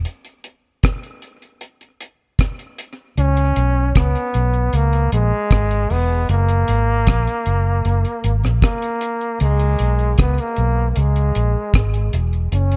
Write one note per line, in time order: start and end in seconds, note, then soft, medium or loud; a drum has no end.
0.05 closed hi-hat medium
0.25 closed hi-hat medium
0.44 closed hi-hat medium
0.83 kick loud
0.83 cross-stick loud
0.83 closed hi-hat medium
1.03 closed hi-hat soft
1.22 closed hi-hat medium
1.42 closed hi-hat soft
1.61 closed hi-hat medium
1.81 closed hi-hat medium
2.01 closed hi-hat medium
2.39 kick loud
2.39 cross-stick loud
2.39 closed hi-hat medium
2.59 closed hi-hat medium
2.78 closed hi-hat medium
3.17 3.54 C#2 medium
3.17 3.92 C#4 loud
3.17 closed hi-hat medium
3.37 closed hi-hat medium
3.56 3.94 B1 medium
3.56 closed hi-hat medium
3.95 4.14 C#2 medium
3.95 4.77 B3 loud
3.95 kick loud
3.95 cross-stick loud
3.95 closed hi-hat medium
4.15 closed hi-hat medium
4.34 4.72 B1 medium
4.34 closed hi-hat medium
4.54 closed hi-hat soft
4.73 5.10 C#2 loud
4.73 5.13 A#3 medium
4.73 closed hi-hat medium
4.93 closed hi-hat soft
5.12 5.31 A#1 medium
5.12 5.93 G#3 medium
5.12 closed hi-hat medium
5.51 5.88 G#1 medium
5.51 kick loud
5.51 cross-stick loud
5.51 closed hi-hat medium
5.71 closed hi-hat medium
5.90 6.27 E1 medium
5.90 6.30 B3 loud
5.90 open hi-hat medium
6.29 6.66 F#1 loud
6.29 8.33 A#3 loud
6.29 closed hi-hat medium
6.49 closed hi-hat medium
6.68 7.05 G#1 medium
6.68 closed hi-hat medium
7.07 7.26 A#1 loud
7.07 kick loud
7.07 cross-stick loud
7.07 closed hi-hat medium
7.27 closed hi-hat soft
7.46 7.83 F#1 medium
7.46 closed hi-hat medium
7.85 8.04 F#1 loud
7.85 closed hi-hat medium
8.05 closed hi-hat medium
8.24 8.43 G#1 medium
8.24 closed hi-hat medium
8.44 8.62 A#1 medium
8.44 cross-stick medium
8.44 closed hi-hat soft
8.62 9.37 A#3 medium
8.62 kick loud
8.62 cross-stick loud
8.62 closed hi-hat medium
8.82 closed hi-hat medium
9.01 closed hi-hat medium
9.21 closed hi-hat soft
9.40 9.78 C#2 loud
9.40 10.15 G#3 medium
9.40 closed hi-hat medium
9.60 closed hi-hat medium
9.79 10.17 B1 medium
9.79 closed hi-hat medium
9.99 closed hi-hat soft
10.18 10.38 C#2 medium
10.18 10.42 B3 medium
10.18 kick loud
10.18 cross-stick loud
10.18 closed hi-hat medium
10.38 10.90 A#3 medium
10.38 closed hi-hat medium
10.56 10.95 B1 medium
10.56 closed hi-hat medium
10.91 11.00 A#3 medium
10.96 11.34 C#2 loud
10.96 12.14 G#3 medium
10.96 closed hi-hat medium
11.16 closed hi-hat medium
11.35 11.54 A#1 medium
11.35 closed hi-hat medium
11.74 12.11 G#1 medium
11.74 kick loud
11.74 cross-stick loud
11.74 closed hi-hat medium
11.94 closed hi-hat medium
12.13 12.51 E1 medium
12.13 closed hi-hat medium
12.33 closed hi-hat soft
12.52 12.77 F#1 loud
12.52 12.77 C#4 loud
12.52 closed hi-hat medium
12.72 closed hi-hat medium